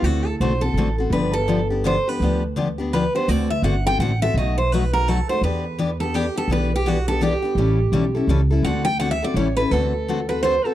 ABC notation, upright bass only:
X:1
M:3/4
L:1/8
Q:"Swing" 1/4=168
K:Dmix
V:1 name="Upright bass" clef=bass
D,,2 B,,,2 A,,,2 | G,,,6 | D,,6 | D,,2 G,,,2 A,,,2 |
B,,,6 | E,,6 | B,,,6 | A,,,2 B,,,2 ^C,,2 |
D,,4 A,,,2 | D,,6 |]